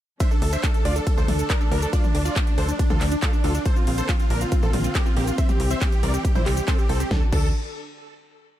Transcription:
0.20 F3 A3 D4 C5 E5, kick, closed hi-hat, ride, shaker
0.31 D4 A4, shaker
0.42 D2 A4, open hi-hat
0.52 D4 C5 E5, closed hi-hat, shaker
0.63 D4 A4, kick, clap, closed hi-hat, ride, shaker
0.74 A4, closed hi-hat, shaker
0.85 D2 D4 F4 D5, open hi-hat
0.96 D4 A4, closed hi-hat, shaker
1.06 A4, kick, closed hi-hat, ride, shaker
1.17 D2 D4 A4 C5, shaker
1.28 D2 D4 A4, open hi-hat, mid tom
1.39 A4, closed hi-hat, shaker
1.50 D4 A#4, kick, clap, closed hi-hat, ride, shaker
1.60 D4 A4, shaker
1.71 D2 D4 A#4, open hi-hat
1.82 D4 A4, closed hi-hat, shaker
1.93 D4 F4 D5, kick, closed hi-hat, ride, shaker
2.04 D4, mid tom, shaker
2.14 D2 D4, open hi-hat
2.25 D4 F4 D5, closed hi-hat, shaker
2.36 D4, kick, clap, closed hi-hat, ride, shaker
2.47 D4, closed hi-hat, shaker
2.58 D2 D4 A4 C5, open hi-hat
2.68 D4, closed hi-hat, shaker
2.79 D4, kick, closed hi-hat, ride, shaker
2.90 D2 D4 F4 A4, mid tom, shaker
3.01 D2 D4, clap, open hi-hat
3.12 D4, closed hi-hat, shaker
3.22 D4 F4 A4, kick, clap, closed hi-hat, ride, shaker
3.33 D4, shaker
3.44 D2 D4 F4 A4, open hi-hat
3.55 D4, closed hi-hat, shaker
3.65 D3 A#3 C4 A4 C5, kick, closed hi-hat, ride, shaker
3.76 C4 F4, shaker
3.87 A#1 C4 F4, open hi-hat
3.98 A4 C5, closed hi-hat, shaker
4.09 C4 F4, kick, clap, closed hi-hat, ride, shaker
4.19 C4 F4, closed hi-hat, shaker
4.30 A#1 D4 A#4, open hi-hat
4.41 C4 F4, closed hi-hat, shaker
4.52 C4 F4, kick, closed hi-hat, ride, shaker
4.63 A#1 F4 A4, shaker
4.73 A#1 C4 F4, open hi-hat, mid tom
4.84 C4 F4, closed hi-hat, shaker
4.95 A#3 G4, kick, clap, closed hi-hat, ride, shaker
5.06 C4 F4, shaker
5.16 A#1 A#3 C4 G4, open hi-hat
5.27 F4, closed hi-hat, shaker
5.38 E3 G3 C4 C5 E5, kick, closed hi-hat, ride, shaker
5.49 C4 G4, closed hi-hat, mid tom, shaker
5.60 C2 G4, open hi-hat
5.71 C4 C5 E5, closed hi-hat, shaker
5.81 C4 G4, kick, clap, closed hi-hat, ride, shaker
5.92 G4, closed hi-hat, shaker
6.03 C2 C4 A#4 D5, open hi-hat
6.14 C4 G4, closed hi-hat, shaker
6.24 G4, kick, closed hi-hat, ride, shaker
6.35 A#1 C4 E4 C5, mid tom, shaker
6.46 C2 C4 G4, clap, open hi-hat
6.57 G4, closed hi-hat, shaker
6.68 C4 A4, kick, clap, closed hi-hat, ride, shaker
6.78 C4 G4, shaker
6.89 C2 C4 A4, open hi-hat
7.00 C4 G4, closed hi-hat, shaker
7.11 D2 D3 D4 F#4 A4 A5, kick, snare
7.32 D2 D4 A4, kick, crash

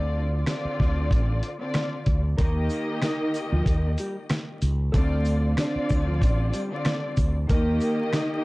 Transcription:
Already playing: D2 D3 C4 F4 D5
0.46 D3 C4 F4 D5, cross-stick, snare, closed hi-hat
0.65 muted fretless electric bass stroke
0.80 D2, kick, snare
1.11 A1, kick, closed hi-hat
1.43 closed hi-hat
1.59 D3 C4 F4 D5
1.74 cross-stick, snare, closed hi-hat
2.06 D2, kick, closed hi-hat
2.37 D#2 D#3 A#3 G4 A#4 D#5, kick, closed hi-hat, sleigh bells
2.70 shaker, sleigh bells
3.02 D#4 D#5, cross-stick, snare, closed hi-hat, sleigh bells
3.34 shaker, sleigh bells
3.52 D2 F3 F4
3.66 D#2, kick, closed hi-hat, sleigh bells
3.98 G3 G4, closed hi-hat, shaker, sleigh bells
4.29 cross-stick, snare, closed hi-hat, sleigh bells
4.62 C#2, closed hi-hat, shaker, sleigh bells
4.92 D2 D3 A3 C4 F4 A4 D5, kick, closed hi-hat, sleigh bells
5.25 shaker, sleigh bells
5.57 D3 C4 D4 F4 D5, cross-stick, snare, closed hi-hat, sleigh bells
5.76 muted fretless electric bass stroke
5.89 D2, kick, shaker, sleigh bells
6.07 F3 F4
6.22 A1, kick, closed hi-hat, sleigh bells
6.53 G3 G4, closed hi-hat, shaker, sleigh bells
6.70 D3 C4 F4 D5
6.85 cross-stick, snare, closed hi-hat, sleigh bells
7.17 D2, kick, closed hi-hat, shaker, sleigh bells
7.48 D#2 D#3 A#3 G4 A#4 D#5, kick, closed hi-hat, sleigh bells
7.80 shaker, sleigh bells
8.13 D#4 D#5, cross-stick, snare, closed hi-hat, sleigh bells

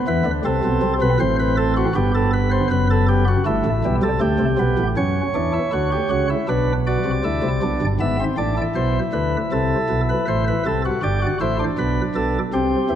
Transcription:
Already playing: B3
0.08 E2 E3 B4
0.25 D2 D3
0.45 C2 C3 C4 A4
0.64 B1 B2
0.82 C2 C3
1.02 B1 B2 B4
1.20 A1 A2 C4 C5
1.39 B4
1.57 A4
1.77 F#4
1.95 G1 G2 B3 G4
2.15 A4
2.33 B4
2.51 C5
2.71 F#1 F#2 B4
2.90 A4
3.08 G4
3.28 F#4
3.46 G1 G2 A3 E4
3.65 A1 A2
3.85 B1 B2 G3
4.03 C2 C3 A4
4.21 D2 D3 A3 G4
4.39 C2 C3
4.59 B1 B2 B3
4.78 A1 A2
4.97 F#2 F#3 C#4 C#5
5.35 E2 E3 D4
5.53 E4
5.73 D2 D3 F#4
5.92 G4
6.10 C#2 C#3 F#4
6.30 E4
6.48 B1 B2 D4 B4
6.87 F#4 D5
7.05 C2 C3
7.24 D2 D3 E4
7.43 C2 C3
7.63 B1 B2 D4
7.82 G1 G2
8.00 G#1 G#2 B3 E5
8.20 C4
8.38 A1 A2 D4 D5
8.57 E4
8.75 B1 B2 C5
9.13 D2 D3 B4
9.52 C2 C3 A4
9.89 B1 B2
10.09 B4
10.28 A1 A2 C5
10.48 B4
10.66 C2 C3 A4
10.85 F#4
11.03 G1 G2 G4 D5
11.22 F#4
11.41 A1 A2 E4 C5
11.60 D4
11.78 B1 B2 B4
12.15 B1 B2 A4
12.53 C2 C3 C4 G4
12.90 E2 E3

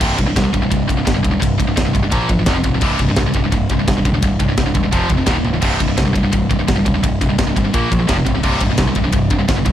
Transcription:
0.00 C1 C2 G2 C3, kick, crash
0.17 C1 C2 G2, kick, ride
0.26 C2 G2
0.36 C2 G2, kick, snare, ride
0.44 C2 G2
0.53 C1 C2 G2, kick, ride
0.62 C2 G2
0.70 C1 C2 G2, kick, ride
0.88 C1 C2 G2, kick, ride
0.97 C2 G2
1.05 G1 C2 G2, kick, snare, ride
1.14 C2 G2
1.23 D#1 C2 G2, kick, ride
1.31 C2 G2
1.40 C1 C2 G2, kick, ride
1.58 C1 C2 G2, kick, ride
1.68 C2 G2
1.76 C1 C2 G2, kick, snare, ride
1.85 C2 G2
1.93 C1 C2 G2, kick, ride
2.03 C2 G2
2.11 A#1 A#2 F3 A#3, kick, ride
2.29 G1 A#2 F3, kick, ride
2.39 A#2 F3
2.46 F1 F2 C3 F3, kick, snare, ride
2.56 F2 C3
2.64 C#1 F2 C3, kick, ride
2.74 F2 C3
2.81 C1 C2 G2 C3, kick, crash
2.99 C1 C2 G2, kick, ride
3.09 C2 G2
3.16 C2 G2, kick, snare, ride
3.27 C2 G2
3.34 C1 C2 G2, kick, ride
3.44 C2 G2
3.52 C1 C2 G2, kick, ride
3.69 C1 C2 G2, kick, ride
3.79 C2 G2
3.88 G1 C2 G2, kick, snare, ride
3.97 C2 G2
4.05 D#1 C2 G2, kick, ride
4.14 C2 G2
4.22 C1 C2 G2, kick, ride
4.40 C1 C2 G2, kick, ride
4.49 C2 G2
4.57 C1 C2 G2, kick, snare, ride
4.66 C2 G2
4.75 E1 C2 G2, kick, ride
4.84 C2 G2
4.92 F1 F2 C3 F3, kick, ride
5.09 F1 F2 C3, kick, ride
5.17 F2 C3
5.26 D#1 D#2 A#2 D#3, kick, snare, ride
5.37 D#2 A#2
5.45 C#1 D#2 A#2, high tom
5.53 D#2 A#2
5.61 C1 C2 G2 C3, kick, crash
5.79 C1 C2 G2, kick, ride
5.88 C2 G2
5.97 C2 G2, kick, snare, ride
6.05 C2 G2
6.13 C1 C2 G2, kick, ride
6.23 C2 G2
6.32 C1 C2 G2, kick, ride
6.50 C1 C2 G2, kick, ride
6.59 C2 G2
6.67 G1 C2 G2, kick, snare, ride
6.76 C2 G2
6.85 D#1 C2 G2, kick, ride
6.94 C2 G2
7.03 C1 C2 G2, kick, ride
7.21 C1 C2 G2, kick, ride
7.29 C2 G2
7.38 C1 C2 G2, kick, snare, ride
7.47 C2 G2
7.56 G#1 C2 G2, kick, ride
7.64 C2 G2
7.73 A#1 A#2 F3 A#3, kick, ride
7.90 A#1 A#2 F3, kick, ride
7.99 A#2 F3
8.07 F1 F2 C3 F3, kick, snare, ride
8.16 F2 C3
8.25 C#1 F2 C3, kick, ride
8.35 F2 C3
8.43 C1 C2 G2 C3, kick, crash
8.60 C1 C2 G2, kick, ride
8.69 C2 G2
8.78 C2 G2, kick, snare, ride
8.87 C2 G2
8.95 C1 C2 G2, kick, ride
9.04 C2 G2
9.12 C1 C2 G2, kick, ride
9.30 C1 C2 G2, kick, ride
9.39 C2 G2
9.48 G1 C2 G2, kick, snare, ride
9.57 C2 G2
9.65 D#1 C2 G2, kick, ride

